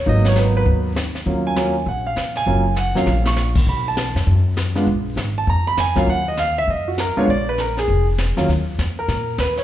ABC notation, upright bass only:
X:1
M:4/4
L:1/8
Q:"Swing" 1/4=199
K:Ebm
V:1 name="Upright bass" clef=bass
A,,,4 E,,4 | E,,4 B,,,2 B,,2 | G,,,3 _F,, B,,,4 | =B,,,3 ^F,, F,,4 |
B,,,2 A,,,2 F,,2 F,,2 | E,,4 G,,3 z | B,,,4 F,,,3 z | E,,2 F,,2 B,,2 E,,2 |]